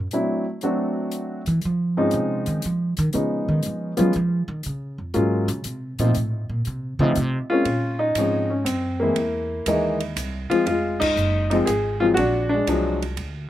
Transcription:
0.11 F#3 A3 C4 D4 E4, closed hi-hat
0.61 F#3 A3 C4 D4 F#4, closed hi-hat
1.11 closed hi-hat
1.46 E3, closed hi-hat
1.61 F3, closed hi-hat
1.97 G#2 F3 G#3 C4 C#4 D#4
2.11 C3, closed hi-hat
2.46 D#3, closed hi-hat
2.62 F3, closed hi-hat
2.97 D#3, closed hi-hat
3.13 C#3 F3 G#3 B3 C#4 D#4, closed hi-hat
3.48 D#3
3.62 F3, closed hi-hat
3.97 F3 F#3 G#3 B3 C#4 F4, closed hi-hat
4.13 F3, closed hi-hat
4.48 D#3
4.63 C#3, closed hi-hat
4.98 F2
5.14 G#2 F#3 G#3 A#3 C#4 F4, closed hi-hat
5.48 C#3, closed hi-hat
5.64 C3, closed hi-hat
5.99 A#2 F3 A3 C4 D#4 F4, closed hi-hat
6.14 A2, closed hi-hat
6.49 A#2
6.65 C3, closed hi-hat
6.99 C#3 F3 A3 C4 D#4 F4
7.15 C3, closed hi-hat
7.50 G#3 A#3 C4 C#4 F4
7.65 A#2, kick, ride
7.99 D#4
8.15 G#2 F3 G#3 C4 C#4, kick, hi-hat pedal, ride
8.50 C#4
8.65 F#2 C4, kick, hi-hat pedal, ride
9.00 E3 G#3 A#3 C4 E4
9.16 E2, kick, ride
9.66 D#2 E3 G#3 A#3 D#4, kick, hi-hat pedal, ride
10.00 ride
10.16 C2, kick, hi-hat pedal, ride
10.50 F3 G#3 C4 F4, muted upright bass stroke, ride
10.66 F1 G#3 F4, kick, ride
11.00 D#4, kick, crash
11.16 F#1, hi-hat pedal
11.50 F3 G#3 C4 D#4, ride
11.66 G#1 G#4, kick, hi-hat pedal, ride
12.00 F3 F#3 G#3 C4 F4
12.14 A#1 D4 F#4, kick, ride
12.49 D4
12.54 G#3
12.67 C2 F3 F#3 G#3 D4, kick, hi-hat pedal, ride
13.02 ride
13.17 D2, kick, ride

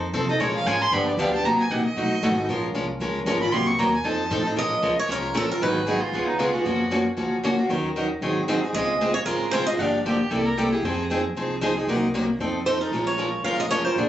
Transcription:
Already playing: F2
0.13 C3 F3 C4 D#4 A4
0.28 C4 D#4 A4 D#5
0.40 A#2 F3 G#3 C#4 F4 A#4 C#5
0.55 F5
0.65 G#2 F3 G#3 C#4 F4 A#4 G#5
0.82 C6
0.91 G2 D3 F3 B3 D4 G4 B5
1.08 D5
1.17 D2 D3 F3 B3 D4 G4 F5
1.33 B3 D4 G4 A5
1.43 C2 C3 F#3 A#3 D#4 A#4 A#5
1.58 G#5, muted upright bass stroke
1.70 A#1 C3 F#3 A#3 D#4 A#4 F#5
1.85 D#5
1.96 B1 B2 F#3 A3 D#4 F#4
2.11 muted upright bass stroke
2.22 G#1 B2 F#3 A3 D#4 F#4
2.37 A3 D#4 F#4
2.48 A#1 F3 G#3 C#4 F4 A#4
2.74 C2 F3 G#3 C#4 F4 A#4
3.00 C#2 F3 G#3 C#4 F4 A#4
3.26 G#1 F3 G#3 C#4 F4 A#4
3.41 C#4 F4 A#4 B5
3.52 C2 C3 F#3 A#3 D#4 A#4 C6
3.67 C#6
3.78 D#2 C3 F#3 A#3 D#4 A#4 A#5
3.94 G#5
4.04 F2 F3 C4 D#4 A4 A5
4.30 A2 F3 C4 D#4 A4
4.45 C4 D#4 A4
4.56 A#1 F3 G#3 C#4 F4 A#4 D#5
4.82 C#2 F3 G#3 C#4 F4 A#4
4.99 C#5
5.08 C2 F3 G#3 C#4 F4 A#4
5.34 A#1 F3 G#3 C#4 F4 A4 A#4
5.49 C#4 F4 A#4
5.60 G#1 D#3 F#3 B3 D#4 G#4 B4
5.87 D#3 F#3 B3 D#4 G#4
6.00 F4
6.12 C#2 C#3 G#3 B3 F4 G#4
6.27 D#4
6.38 C#3 G#3 B3 F4 G#4
6.53 B3 F4 F#4 G#4
6.65 F#2 C#3 F3 A#3 C#4 F#4
6.91 C#3 F3 A#3 C#4 F#4
7.17 C#2 C#3 F3 A#3 C#4 F#4
7.43 C#3 F3 A#3 C#4 F#4
7.58 A#3 C#4 F#4
7.69 D#2 D#3 F#3 C#4 D#4 A#4
7.96 D#3 F#3 C#4 D#4 A#4
8.21 G#1 D#3 F#3 C4 D#4 G#4
8.48 D#3 F#3 C4 D#4 G#4
8.63 C4 D#4 G#4
8.73 C#2 C#3 G#3 C4 F4 G#4 D#5
9.01 C#3 G#3 C4 F4 G#4
9.14 C#5
9.26 G#1 C#3 G#3 C4 F4 G#4 A#4
9.51 C#3 G#3 C4 F4 G#4 C5
9.67 C4 F4 G#4 D#5
9.78 G1 D3 F3 A#3 D4 G4 F5
10.05 D3 F3 A#3 D4 G4
10.31 C2 C3 G3 A#3 E4 G4 A4
10.45 A#4
10.57 C3 G3 A#3 E4 G4 A4
10.72 A#3 E4 G4 G#4
10.83 F2 F3 C4 D#4 G#4
11.10 F3 C4 D#4 G#4
11.35 C2 F3 C4 D#4 G#4
11.61 F3 C4 D#4 G#4
11.77 C4 D#4 G#4
11.87 C2 C3 F#3 A#3 D#4 A#4
12.14 C3 F#3 A#3 D#4 A#4
12.39 F2 F3 C4 D#4 A4
12.66 F3 C4 D#4 A4 C5
12.80 C4 D#4 A4 A#4
12.91 A#1 F3 G#3 C#4 F4 A#4
13.07 C#5
13.18 F3 G#3 C#4 F4 A#4
13.43 F1 F3 G#3 C#4 F4 A#4 F5
13.60 D#5
13.71 F3 G#3 C#4 F4 A#4 C#5
13.84 C#4 F4 A#4 C5
13.96 A#1 D3 F3 A#3 D4 G#4

